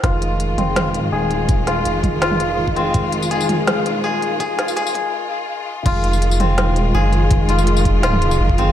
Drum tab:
CC |----------------|----------------|----------------|----------------|
HH |x-x-x-x-x-x---x-|x-x-x-x-x-x---x-|x-x-x-x-x-x---x-|x-x-x-x---------|
TB |----------------|----------------|---x-x----------|---x-x----------|
SD |o-------o-------|--o-----o-------|--------o-------|--o-------------|
T2 |------o-o-------|------o--o------|------o-o-------|------o---------|
BD |o---------------|o-----o------o--|o---------------|o-----o---------|

CC |x---------------|----------------|
HH |x-x-x-x-x-x---x-|x-x-x-x-x-x---x-|
TB |---x-x----------|---x-x-----x----|
SD |--------o-------|--------o-------|
T2 |------o-o-------|---------o------|
BD |o---------------|o-----o------o--|